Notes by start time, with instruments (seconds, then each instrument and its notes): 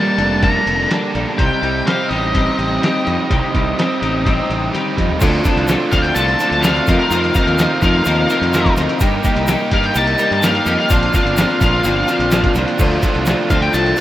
Already playing: overdriven electric guitar G2 G3 A#3 D4, clean electric guitar G3 A#3 D4 A4, lead electric guitar A5
0.18 fingered electric bass F1, clean electric guitar A#3 D4 A4, overdriven electric guitar D4, closed hi-hat
0.41 clean electric guitar G3 A#3 D4 A4, overdriven electric guitar A#3, lead electric guitar A#5, kick, closed hi-hat
0.66 fingered electric bass F1, overdriven electric guitar A4, closed hi-hat
0.89 clean electric guitar G3 A#3 D4 A4, overdriven electric guitar D4, snare, closed hi-hat
1.14 fingered electric bass A#1, overdriven electric guitar G3, clean electric guitar A#3 D4 A4, closed hi-hat
1.37 fingered electric bass C2, overdriven electric guitar C3, clean electric guitar G3 C4 D#4 G4, lead electric guitar G5, kick, closed hi-hat
1.61 fingered electric bass C2, overdriven electric guitar G3, clean electric guitar C4 D#4 G4, closed hi-hat
1.86 clean electric guitar G3 C4 D#4 G4, overdriven electric guitar C4, lead electric guitar F5, snare, closed hi-hat
2.09 fingered electric bass A1, overdriven electric guitar D#4, clean electric guitar D#4 G4, lead electric guitar D#5, closed hi-hat
2.14 clean electric guitar C4
2.33 clean electric guitar G3 C4 D#4 G4, overdriven electric guitar C4, kick, closed hi-hat
2.59 fingered electric bass A1, overdriven electric guitar G4, closed hi-hat
2.81 clean electric guitar G3 C4 D#4 G4, overdriven electric guitar D#4, snare, closed hi-hat
3.05 fingered electric bass F2, overdriven electric guitar G3, clean electric guitar C4 D#4 G4, closed hi-hat
3.30 fingered electric bass C2, overdriven electric guitar C3, clean electric guitar G3 C4 D#4 G4, kick, closed hi-hat
3.54 fingered electric bass C2, overdriven electric guitar G3, clean electric guitar C4 D#4 G4, kick, closed hi-hat
3.78 clean electric guitar G3 C4 D#4 G4, overdriven electric guitar C4, snare, closed hi-hat
4.01 fingered electric bass A1, overdriven electric guitar D#4, clean electric guitar D#4 G4, closed hi-hat
4.05 clean electric guitar C4
4.25 clean electric guitar G3 C4 D#4 G4, overdriven electric guitar C4, kick, closed hi-hat
4.50 fingered electric bass A1, overdriven electric guitar G4, closed hi-hat
4.72 clean electric guitar G3 C4 D#4 G4, overdriven electric guitar D#4, closed hi-hat, high tom
4.97 fingered electric bass F2, overdriven electric guitar G3, clean electric guitar C4 D#4 G4, kick, closed hi-hat
5.10 floor tom
5.20 fingered electric bass D2, overdriven electric guitar D3 A3 D4 F4, clean electric guitar F3 C4 D4 A4, kick, closed hi-hat, crash, shaker
5.43 overdriven electric guitar D3 A3 D4 F4, clean electric guitar F3 C4 D4 A4, kick, closed hi-hat, shaker
5.56 fingered electric bass C2, closed hi-hat
5.67 overdriven electric guitar D3 A3 D4 F4, clean electric guitar F3 C4 D4 A4, snare, closed hi-hat, shaker
5.91 fingered electric bass D2, overdriven electric guitar D3 A3 D4 F4, clean electric guitar F3 C4 D4 A4, lead electric guitar F5, kick, closed hi-hat, shaker
6.02 lead electric guitar G5, closed hi-hat
6.15 fingered electric bass C2, overdriven electric guitar D3 A3 D4 F4, clean electric guitar F3 C4 D4 A4, lead electric guitar A5, closed hi-hat, shaker
6.28 closed hi-hat
6.39 overdriven electric guitar D3 A3 D4 F4, clean electric guitar F3 C4 D4 A4, closed hi-hat, shaker
6.50 fingered electric bass D2, lead electric guitar A5, closed hi-hat
6.62 overdriven electric guitar D3 A3 D4 F4, clean electric guitar F3 C4 D4 A4, lead electric guitar F5, snare, closed hi-hat, shaker
6.76 closed hi-hat
6.87 overdriven electric guitar F2 C3 D#3 A3 D#4 F4, fingered electric bass F2, clean electric guitar F3 C4 D#4 A#4, kick, snare, closed hi-hat, shaker
6.99 lead electric guitar F5
7.10 overdriven electric guitar F2 C3 D#3 A3 D#4 F4, fingered electric bass F2, clean electric guitar F3 C4 D#4 A#4, closed hi-hat, shaker
7.24 closed hi-hat
7.33 overdriven electric guitar F2 C3 D#3 A3 D#4 F4, clean electric guitar F3 C4 D#4 A#4, kick, closed hi-hat, shaker
7.46 fingered electric bass D#2, closed hi-hat
7.58 overdriven electric guitar F2 C3 D#3 A3 D#4 F4, clean electric guitar F3 C4 D#4 A#4, snare, closed hi-hat, shaker
7.81 overdriven electric guitar F2 C3 D#3 A3 D#4 F4, fingered electric bass F2, clean electric guitar F3 C4 D#4 A#4, lead electric guitar F5, kick, closed hi-hat, shaker
8.04 fingered electric bass D#2, overdriven electric guitar F2 C3 D#3 A3 D#4 F4, clean electric guitar F3 C4 D#4 A#4, closed hi-hat, shaker
8.28 overdriven electric guitar F2 C3 D#3 A3 D#4 F4, clean electric guitar F3 C4 D#4 A#4, closed hi-hat, shaker
8.41 fingered electric bass F2, closed hi-hat
8.52 overdriven electric guitar F2 C3 D#3 A3 D#4 F4, clean electric guitar F3 C4 D#4 A#4, snare, closed hi-hat, shaker
8.65 kick, closed hi-hat
8.76 fingered electric bass D2, overdriven electric guitar F2 C3 D#3 A3 D#4 F4, clean electric guitar F3 C4 D#4 A#4, snare, closed hi-hat, shaker
8.89 closed hi-hat
9.00 fingered electric bass G2, overdriven electric guitar G3 A#3 D#4 G4, clean electric guitar A#3 D#4 G4, kick, closed hi-hat, shaker
9.24 overdriven electric guitar G3 A#3 D#4 G4, clean electric guitar A#3 D#4 G4, kick, closed hi-hat, shaker
9.36 fingered electric bass C2, closed hi-hat
9.47 overdriven electric guitar G3 A#3 D#4 G4, clean electric guitar A#3 D#4 G4, snare, closed hi-hat, shaker
9.71 fingered electric bass G2, overdriven electric guitar G3 A#3 D#4 G4, clean electric guitar A#3 D#4 G4, lead electric guitar F5, kick, closed hi-hat
9.84 lead electric guitar G5, closed hi-hat
9.95 fingered electric bass C2, overdriven electric guitar G3 A#3 D#4 G4, clean electric guitar A#3 D#4 G4, lead electric guitar A5, closed hi-hat, shaker
10.07 closed hi-hat
10.18 overdriven electric guitar G3 A#3 D#4 G4, clean electric guitar A#3 D#4 G4, closed hi-hat, shaker
10.31 fingered electric bass G2, lead electric guitar A5, closed hi-hat
10.42 overdriven electric guitar G3 A#3 D#4 G4, clean electric guitar A#3 D#4 G4, lead electric guitar F5, snare, closed hi-hat, shaker
10.55 closed hi-hat
10.66 fingered electric bass F2, overdriven electric guitar G3 A#3 D#4 G4, clean electric guitar A#3 D#4 G4, snare, closed hi-hat, shaker
10.79 lead electric guitar F5
10.89 fingered electric bass A#1, overdriven electric guitar A#2 D3 A#3 D4 F4, clean electric guitar F3 C4 D4, kick, closed hi-hat, shaker
11.03 closed hi-hat
11.13 overdriven electric guitar A#2 D3 A#3 D4 F4, clean electric guitar F3 C4 D4, kick, closed hi-hat, shaker
11.25 fingered electric bass G1, closed hi-hat
11.37 overdriven electric guitar A#2 D3 A#3 D4 F4, clean electric guitar F3 C4 D4, snare, closed hi-hat, shaker
11.60 fingered electric bass A#1, overdriven electric guitar A#2 D3 A#3 D4 F4, clean electric guitar F3 C4 D4, lead electric guitar F5, kick, closed hi-hat, shaker
11.84 fingered electric bass G1, overdriven electric guitar A#2 D3 A#3 D4 F4, clean electric guitar F3 C4 D4, closed hi-hat, shaker
12.08 overdriven electric guitar A#2 D3 A#3 D4 F4, clean electric guitar F3 C4 D4, closed hi-hat, shaker
12.19 fingered electric bass A#1, closed hi-hat
12.31 overdriven electric guitar A#2 D3 A#3 D4 F4, clean electric guitar F3 C4 D4, snare, closed hi-hat, shaker
12.44 kick, closed hi-hat
12.55 fingered electric bass C2, overdriven electric guitar A#2 D3 A#3 D4 F4, clean electric guitar F3 C4 D4, snare, closed hi-hat, shaker
12.68 closed hi-hat
12.79 fingered electric bass D2, overdriven electric guitar D3 A3 D4 F4, clean electric guitar F3 A3 C4, kick, crash, shaker
13.02 overdriven electric guitar D3 A3 D4 F4, clean electric guitar F3 A3 C4, kick, closed hi-hat, shaker
13.15 fingered electric bass C2, closed hi-hat
13.26 overdriven electric guitar D3 A3 D4 F4, clean electric guitar F3 A3 C4, snare, closed hi-hat, shaker
13.50 fingered electric bass D2, overdriven electric guitar D3 A3 D4 F4, clean electric guitar F3 A3 C4, lead electric guitar F5, kick, closed hi-hat, shaker
13.61 lead electric guitar G5, closed hi-hat
13.73 fingered electric bass C2, overdriven electric guitar D3 A3 D4 F4, clean electric guitar F3 A3 C4, lead electric guitar A5, closed hi-hat, shaker
13.86 closed hi-hat
13.96 overdriven electric guitar D3 A3, shaker